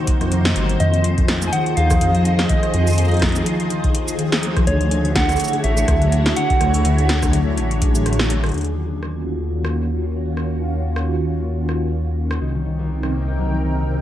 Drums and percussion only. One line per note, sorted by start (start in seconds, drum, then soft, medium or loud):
0.07 kick loud
0.07 closed hi-hat medium
0.21 cross-stick soft
0.21 closed hi-hat soft
0.32 closed hi-hat medium
0.45 snare loud
0.45 closed hi-hat soft
0.56 closed hi-hat medium
0.69 closed hi-hat soft
0.80 closed hi-hat medium
0.94 closed hi-hat soft
1.04 closed hi-hat medium
1.18 kick loud
1.18 closed hi-hat soft
1.28 cross-stick soft
1.28 snare loud
1.28 closed hi-hat medium
1.42 closed hi-hat soft
1.42 shaker medium
1.53 closed hi-hat medium
1.66 closed hi-hat soft
1.77 closed hi-hat medium
1.90 kick loud
1.90 cross-stick medium
1.90 closed hi-hat soft
1.90 shaker medium
2.01 closed hi-hat medium
2.15 closed hi-hat soft
2.25 closed hi-hat medium
2.39 snare loud
2.39 closed hi-hat soft
2.49 kick loud
2.49 closed hi-hat medium
2.63 cross-stick soft
2.63 closed hi-hat soft
2.74 closed hi-hat medium
2.87 closed hi-hat soft
2.87 shaker medium
2.90 shaker medium
2.93 shaker soft
2.95 closed hi-hat medium
2.95 shaker soft
3.05 shaker soft
3.08 closed hi-hat soft
3.08 shaker soft
3.14 closed hi-hat soft
3.17 closed hi-hat soft
3.19 kick loud
3.19 cross-stick medium
3.19 snare loud
3.19 closed hi-hat soft
3.22 closed hi-hat medium
3.29 closed hi-hat soft
3.32 closed hi-hat soft
3.36 closed hi-hat soft
3.36 shaker medium
3.46 closed hi-hat medium
3.60 closed hi-hat soft
3.70 closed hi-hat medium
3.84 kick loud
3.84 closed hi-hat soft
3.95 closed hi-hat medium
4.08 closed hi-hat soft
4.08 shaker medium
4.19 closed hi-hat medium
4.32 snare loud
4.32 closed hi-hat soft
4.43 closed hi-hat medium
4.56 kick loud
4.56 cross-stick medium
4.56 closed hi-hat soft
4.67 closed hi-hat medium
4.81 closed hi-hat soft
4.91 closed hi-hat medium
5.05 closed hi-hat soft
5.15 kick loud
5.15 snare loud
5.15 closed hi-hat medium
5.29 cross-stick medium
5.29 closed hi-hat soft
5.29 shaker soft
5.32 shaker soft
5.36 closed hi-hat medium
5.36 shaker medium
5.40 shaker medium
5.44 shaker medium
5.48 shaker medium
5.53 closed hi-hat soft
5.64 closed hi-hat medium
5.77 closed hi-hat soft
5.77 shaker medium
5.88 kick loud
5.88 cross-stick medium
5.88 closed hi-hat medium
6.02 closed hi-hat soft
6.12 closed hi-hat medium
6.26 snare loud
6.26 closed hi-hat soft
6.36 closed hi-hat medium
6.50 kick loud
6.50 closed hi-hat soft
6.61 cross-stick medium
6.61 closed hi-hat medium
6.74 closed hi-hat soft
6.74 shaker medium
6.85 closed hi-hat medium
6.98 closed hi-hat soft
7.09 snare loud
7.09 closed hi-hat medium
7.23 kick loud
7.23 cross-stick medium
7.23 closed hi-hat soft
7.23 shaker medium
7.33 closed hi-hat medium
7.58 closed hi-hat medium
7.71 closed hi-hat soft
7.82 kick loud
7.82 closed hi-hat loud
7.95 closed hi-hat soft
7.95 shaker medium
8.06 cross-stick medium
8.06 closed hi-hat medium
8.13 closed hi-hat soft
8.19 cross-stick medium
8.19 snare loud
8.30 closed hi-hat medium
8.44 cross-stick medium
8.44 closed hi-hat soft
8.46 closed hi-hat soft
8.49 closed hi-hat soft
8.52 closed hi-hat soft
8.54 closed hi-hat soft
8.58 closed hi-hat soft
8.61 closed hi-hat soft
8.64 closed hi-hat soft
9.03 cross-stick soft
9.65 cross-stick medium
10.37 cross-stick soft
10.96 cross-stick medium
11.69 cross-stick soft
12.31 cross-stick medium
13.03 cross-stick soft